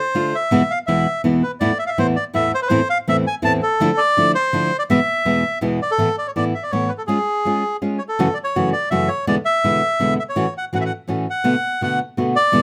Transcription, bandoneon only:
0.00 0.36 C5 medium
0.35 0.72 E5 medium
0.70 0.79 F5 medium
0.87 1.22 E5 medium
1.43 1.51 B4 medium
1.60 1.78 D5 medium
1.79 1.84 E5 medium
1.86 1.98 E5 medium
1.86 1.90 F5 medium
1.99 2.07 C5 medium
2.16 2.24 D5 medium
2.35 2.52 E5 medium
2.54 2.60 C5 medium
2.62 2.68 B4 medium
2.68 2.88 C5 medium
2.90 2.98 F5 medium
3.09 3.17 E5 loud
3.27 3.35 G#5 medium
3.45 3.53 A5 loud
3.63 4.00 A4 medium
3.97 4.32 D5 loud
4.35 4.77 C5 medium
4.79 4.83 D5 medium
4.90 5.59 E5 medium
5.82 5.91 D5 medium
5.91 6.16 A4 medium
6.18 6.27 D5 medium
6.27 6.31 C#5 medium
6.36 6.44 D5 medium
6.54 6.63 E5 medium
6.63 6.71 D5 medium
6.71 6.90 C#5 medium
6.89 6.93 B4 medium
6.98 7.02 A4 medium
7.07 7.77 G#4 medium
7.98 8.03 C#5 medium
8.09 8.34 A4 medium
8.34 8.38 D5 medium
8.44 8.70 C#5 medium
8.73 8.89 D5 medium
8.91 9.09 E5 medium
9.08 9.25 C#5 medium
9.27 9.35 D5 medium
9.45 10.14 E5 loud
10.20 10.23 E5 medium
10.29 10.54 C#5 medium
10.57 10.65 F#5 medium
10.75 10.78 F#5 medium
10.81 10.84 E5 medium
10.86 10.92 F#5 medium
11.30 11.81 F#5 medium
11.83 11.99 F#5 medium
12.36 12.62 D5 loud

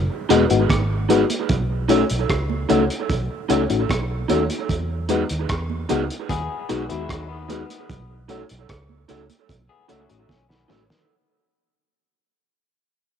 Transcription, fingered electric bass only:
0.31 0.48 E1 medium
0.51 0.68 G#1 medium
0.70 1.23 G#1 medium
1.50 2.03 B1 loud
2.11 2.28 B1 medium
2.30 2.65 C#2 medium
2.71 2.88 C#2 loud
3.10 3.28 B1 medium
3.50 3.68 C#2 medium
3.71 3.87 A1 medium
3.90 4.24 B1 loud
4.31 4.48 D#2 medium
4.70 5.22 E2 loud
5.31 5.47 D#2 medium
5.50 5.84 E2 medium
5.91 6.08 C#2 loud
6.30 6.47 D#2 loud
6.71 6.88 B1 medium
6.91 7.08 D#2 medium
7.10 7.62 D#2 medium
7.90 8.42 B1 medium
8.51 8.68 B1 medium
8.70 9.04 C#2 medium
9.11 9.28 C#2 medium
9.50 9.67 B1 loud
9.91 10.08 C#2 medium
10.11 10.28 A1 medium
10.30 10.64 B1 medium
10.71 10.88 A1 medium

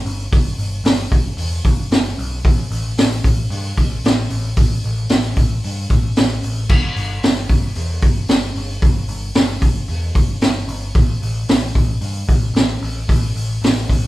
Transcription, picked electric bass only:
0.05 0.26 G1 medium
0.32 0.52 G1 medium
0.58 0.79 G1 medium
0.84 1.05 G1 loud
1.11 1.32 G1 medium
1.37 1.58 E2 medium
1.64 1.85 G1 medium
1.91 2.12 G1 medium
2.18 2.39 B1 medium
2.45 2.65 A1 loud
2.71 2.91 A1 medium
2.98 3.18 A1 medium
3.24 3.44 A1 medium
3.50 3.71 G2 medium
3.77 3.97 A1 loud
4.04 4.25 A1 loud
4.30 4.51 A1 loud
4.57 4.77 A1 loud
4.84 5.04 A1 loud
5.11 5.31 A1 loud
5.36 5.57 A1 medium
5.65 5.84 G2 medium
5.90 6.10 A1 medium
6.17 6.37 A1 loud
6.43 6.64 A1 medium
6.69 6.90 G1 medium
6.97 7.17 G1 medium
7.24 7.44 G1 loud
7.49 7.70 G1 medium
7.76 7.96 E2 medium
8.02 8.23 G1 medium
8.29 8.49 G1 loud
8.55 8.76 G1 medium
8.82 9.02 G1 medium
9.08 9.29 G1 medium
9.36 9.56 G1 loud
9.61 9.82 G1 medium
9.88 10.09 E2 medium
10.15 10.35 G1 medium
10.42 10.62 G1 loud
10.68 10.88 G1 loud
10.95 11.15 A1 loud
11.22 11.42 A1 medium
11.49 11.69 A1 medium
11.75 11.95 A1 medium
12.01 12.22 G2 medium
12.28 12.48 A1 medium
12.54 12.75 A1 loud
12.82 13.02 A1 loud
13.08 13.29 A1 loud
13.35 13.56 A1 medium
13.62 13.82 A1 medium
13.89 14.07 A1 medium

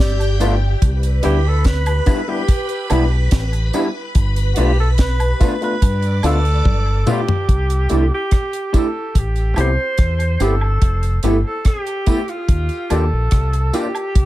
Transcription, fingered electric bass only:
0.00 0.74 G1 medium
0.82 1.20 C2 loud
1.25 1.99 D2 medium
2.91 3.28 B1 loud
3.32 3.70 A1 loud
4.16 4.53 G1 loud
4.58 5.32 B1 loud
5.82 6.20 G2 loud
6.23 6.61 D2 loud
6.66 7.03 G1 medium
7.49 7.86 C2 medium
7.91 8.10 C2 medium
9.16 9.53 A1 medium
9.57 9.76 C2 medium
9.99 10.36 E2 medium
10.40 10.78 G1 medium
10.82 11.19 F1 loud
11.23 11.42 G1 loud
12.49 12.68 D#2 medium
12.91 13.10 D#2 medium
13.13 13.31 A#1 medium
13.32 13.70 C2 loud
14.16 14.25 C2 medium

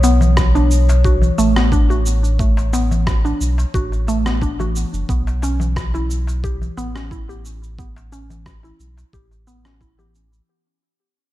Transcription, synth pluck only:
0.04 0.20 B3 medium
0.55 0.70 D4 medium
1.05 1.22 F#4 medium
1.38 1.54 A3 loud
1.56 1.71 B3 medium
1.72 1.89 D4 medium
1.90 2.05 F#4 medium
2.40 2.56 A3 medium
2.73 2.90 B3 medium
3.25 3.40 D4 medium
3.74 3.91 F#4 medium
4.08 4.24 A3 loud
4.26 4.41 B3 medium
4.42 4.59 D4 medium
4.60 4.75 F#4 medium
5.09 5.26 B3 medium
5.43 5.60 C#4 medium
5.95 6.09 E4 medium
6.44 6.61 G4 medium
6.77 6.93 B3 loud
6.95 7.10 C#4 medium
7.11 7.28 E4 medium
7.29 7.44 G4 medium
7.79 7.96 B3 medium
8.12 8.29 C#4 medium
8.64 8.79 E4 medium
9.14 9.30 G4 medium
9.47 9.63 B3 loud
9.65 9.80 C#4 medium
9.81 9.98 E4 medium
9.99 10.14 G4 medium

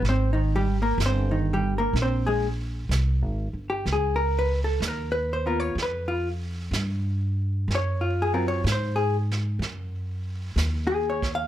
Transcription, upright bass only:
0.02 0.95 G#1 medium
0.98 1.91 G1 medium
1.93 2.86 A#1 medium
2.89 3.22 C2 medium
3.22 3.53 G#1 medium
3.53 3.83 G1 soft
3.86 4.78 C#2 medium
4.80 5.74 D#2 medium
5.75 6.69 F2 medium
6.71 7.65 G2 medium
7.68 8.61 F#2 medium
8.64 9.57 G#2 medium
9.59 10.53 F#2 medium
10.56 11.47 D#2 medium

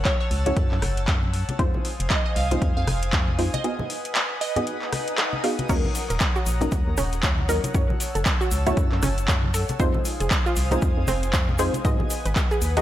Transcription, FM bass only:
0.31 0.53 C#2 medium
0.57 0.69 F#2 medium
0.72 0.80 F#2 medium
0.82 1.09 F#1 medium
1.08 1.44 F#2 loud
1.59 1.71 F2 loud
2.00 2.08 F1 medium
2.36 2.58 C2 medium
2.62 2.74 F2 medium
2.77 2.85 F2 medium
2.87 3.14 F1 medium
3.13 3.49 F2 loud
5.69 5.82 D#2 loud
6.10 6.19 D#1 medium
6.46 6.68 A#1 medium
6.72 6.84 D#2 medium
6.87 6.96 D#2 loud
6.98 7.25 D#1 medium
7.23 7.60 D#2 loud
7.75 7.87 F#2 medium
8.15 8.24 F#1 medium
8.51 8.73 C#2 medium
8.77 8.89 F#2 medium
8.92 9.01 F#2 medium
9.03 9.30 F#1 medium
9.28 9.65 F#2 loud
9.80 9.92 F2 loud
10.21 10.29 F1 loud
10.57 10.78 C2 medium
10.82 10.95 F2 medium
10.97 11.06 F2 medium
11.08 11.35 F1 medium
11.33 11.70 F2 loud
11.85 11.97 G#2 loud
12.26 12.34 G#1 loud
12.62 12.82 D#2 medium

